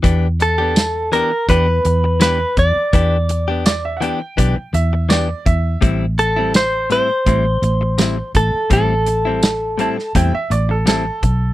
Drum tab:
HH |x-x-x-x-x-x-x-x-|x-x-x-x-x-x-x-x-|x-x-x-x-x-x-x-x-|x-x-x-x-x-x-x-x-|
TB |----x-------x---|----x-------x---|----x-------x---|----x-------x---|
SD |----o-------o---|----o-------o---|----o-------o---|----o--o----o---|
BD |o-------o-----o-|o-------o-----o-|o-------o-----o-|o-------o-----o-|